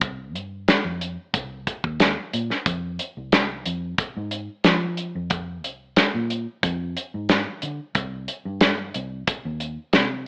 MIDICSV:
0, 0, Header, 1, 3, 480
1, 0, Start_track
1, 0, Key_signature, -3, "minor"
1, 0, Tempo, 661521
1, 13, Time_signature, 4, 2, 24, 8
1, 7454, End_track
2, 0, Start_track
2, 0, Title_t, "Fingered electric bass"
2, 0, Program_c, 0, 33
2, 0, Note_on_c, 0, 36, 82
2, 253, Note_off_c, 0, 36, 0
2, 253, Note_on_c, 0, 43, 86
2, 478, Note_off_c, 0, 43, 0
2, 615, Note_on_c, 0, 41, 79
2, 842, Note_off_c, 0, 41, 0
2, 969, Note_on_c, 0, 36, 91
2, 1197, Note_off_c, 0, 36, 0
2, 1334, Note_on_c, 0, 39, 78
2, 1561, Note_off_c, 0, 39, 0
2, 1695, Note_on_c, 0, 46, 77
2, 1811, Note_off_c, 0, 46, 0
2, 1932, Note_on_c, 0, 41, 99
2, 2159, Note_off_c, 0, 41, 0
2, 2300, Note_on_c, 0, 36, 71
2, 2634, Note_off_c, 0, 36, 0
2, 2657, Note_on_c, 0, 41, 99
2, 2882, Note_off_c, 0, 41, 0
2, 3023, Note_on_c, 0, 44, 79
2, 3247, Note_off_c, 0, 44, 0
2, 3378, Note_on_c, 0, 53, 89
2, 3718, Note_off_c, 0, 53, 0
2, 3739, Note_on_c, 0, 41, 87
2, 4093, Note_off_c, 0, 41, 0
2, 4093, Note_on_c, 0, 36, 85
2, 4320, Note_off_c, 0, 36, 0
2, 4458, Note_on_c, 0, 46, 83
2, 4684, Note_off_c, 0, 46, 0
2, 4811, Note_on_c, 0, 41, 99
2, 5039, Note_off_c, 0, 41, 0
2, 5182, Note_on_c, 0, 44, 77
2, 5406, Note_off_c, 0, 44, 0
2, 5537, Note_on_c, 0, 50, 78
2, 5653, Note_off_c, 0, 50, 0
2, 5770, Note_on_c, 0, 36, 96
2, 5998, Note_off_c, 0, 36, 0
2, 6134, Note_on_c, 0, 43, 81
2, 6471, Note_off_c, 0, 43, 0
2, 6498, Note_on_c, 0, 36, 97
2, 6722, Note_off_c, 0, 36, 0
2, 6859, Note_on_c, 0, 39, 82
2, 7084, Note_off_c, 0, 39, 0
2, 7213, Note_on_c, 0, 48, 85
2, 7454, Note_off_c, 0, 48, 0
2, 7454, End_track
3, 0, Start_track
3, 0, Title_t, "Drums"
3, 9, Note_on_c, 9, 42, 76
3, 11, Note_on_c, 9, 36, 111
3, 82, Note_off_c, 9, 42, 0
3, 84, Note_off_c, 9, 36, 0
3, 257, Note_on_c, 9, 42, 57
3, 330, Note_off_c, 9, 42, 0
3, 493, Note_on_c, 9, 42, 83
3, 497, Note_on_c, 9, 38, 111
3, 566, Note_off_c, 9, 42, 0
3, 569, Note_off_c, 9, 38, 0
3, 735, Note_on_c, 9, 42, 60
3, 807, Note_off_c, 9, 42, 0
3, 972, Note_on_c, 9, 36, 110
3, 973, Note_on_c, 9, 42, 89
3, 1044, Note_off_c, 9, 36, 0
3, 1046, Note_off_c, 9, 42, 0
3, 1212, Note_on_c, 9, 36, 76
3, 1213, Note_on_c, 9, 42, 66
3, 1285, Note_off_c, 9, 36, 0
3, 1285, Note_off_c, 9, 42, 0
3, 1335, Note_on_c, 9, 36, 76
3, 1408, Note_off_c, 9, 36, 0
3, 1450, Note_on_c, 9, 42, 81
3, 1453, Note_on_c, 9, 38, 96
3, 1522, Note_off_c, 9, 42, 0
3, 1526, Note_off_c, 9, 38, 0
3, 1694, Note_on_c, 9, 42, 61
3, 1766, Note_off_c, 9, 42, 0
3, 1817, Note_on_c, 9, 38, 33
3, 1889, Note_off_c, 9, 38, 0
3, 1930, Note_on_c, 9, 36, 108
3, 1930, Note_on_c, 9, 42, 80
3, 2002, Note_off_c, 9, 42, 0
3, 2003, Note_off_c, 9, 36, 0
3, 2171, Note_on_c, 9, 42, 63
3, 2244, Note_off_c, 9, 42, 0
3, 2411, Note_on_c, 9, 42, 83
3, 2415, Note_on_c, 9, 38, 114
3, 2484, Note_off_c, 9, 42, 0
3, 2488, Note_off_c, 9, 38, 0
3, 2652, Note_on_c, 9, 42, 60
3, 2725, Note_off_c, 9, 42, 0
3, 2890, Note_on_c, 9, 42, 79
3, 2891, Note_on_c, 9, 36, 109
3, 2962, Note_off_c, 9, 42, 0
3, 2964, Note_off_c, 9, 36, 0
3, 3128, Note_on_c, 9, 42, 62
3, 3201, Note_off_c, 9, 42, 0
3, 3367, Note_on_c, 9, 42, 71
3, 3370, Note_on_c, 9, 38, 102
3, 3439, Note_off_c, 9, 42, 0
3, 3443, Note_off_c, 9, 38, 0
3, 3608, Note_on_c, 9, 42, 57
3, 3681, Note_off_c, 9, 42, 0
3, 3846, Note_on_c, 9, 42, 77
3, 3851, Note_on_c, 9, 36, 105
3, 3918, Note_off_c, 9, 42, 0
3, 3924, Note_off_c, 9, 36, 0
3, 4094, Note_on_c, 9, 42, 60
3, 4167, Note_off_c, 9, 42, 0
3, 4328, Note_on_c, 9, 42, 82
3, 4331, Note_on_c, 9, 38, 102
3, 4400, Note_off_c, 9, 42, 0
3, 4404, Note_off_c, 9, 38, 0
3, 4573, Note_on_c, 9, 42, 57
3, 4645, Note_off_c, 9, 42, 0
3, 4812, Note_on_c, 9, 36, 107
3, 4813, Note_on_c, 9, 42, 82
3, 4884, Note_off_c, 9, 36, 0
3, 4885, Note_off_c, 9, 42, 0
3, 5055, Note_on_c, 9, 42, 63
3, 5127, Note_off_c, 9, 42, 0
3, 5290, Note_on_c, 9, 42, 81
3, 5293, Note_on_c, 9, 38, 105
3, 5362, Note_off_c, 9, 42, 0
3, 5366, Note_off_c, 9, 38, 0
3, 5529, Note_on_c, 9, 42, 59
3, 5601, Note_off_c, 9, 42, 0
3, 5767, Note_on_c, 9, 42, 85
3, 5770, Note_on_c, 9, 36, 104
3, 5840, Note_off_c, 9, 42, 0
3, 5843, Note_off_c, 9, 36, 0
3, 6009, Note_on_c, 9, 42, 67
3, 6081, Note_off_c, 9, 42, 0
3, 6245, Note_on_c, 9, 42, 85
3, 6248, Note_on_c, 9, 38, 115
3, 6317, Note_off_c, 9, 42, 0
3, 6321, Note_off_c, 9, 38, 0
3, 6490, Note_on_c, 9, 42, 66
3, 6562, Note_off_c, 9, 42, 0
3, 6729, Note_on_c, 9, 42, 88
3, 6731, Note_on_c, 9, 36, 116
3, 6802, Note_off_c, 9, 42, 0
3, 6803, Note_off_c, 9, 36, 0
3, 6967, Note_on_c, 9, 42, 62
3, 7040, Note_off_c, 9, 42, 0
3, 7204, Note_on_c, 9, 42, 72
3, 7208, Note_on_c, 9, 38, 100
3, 7277, Note_off_c, 9, 42, 0
3, 7280, Note_off_c, 9, 38, 0
3, 7454, End_track
0, 0, End_of_file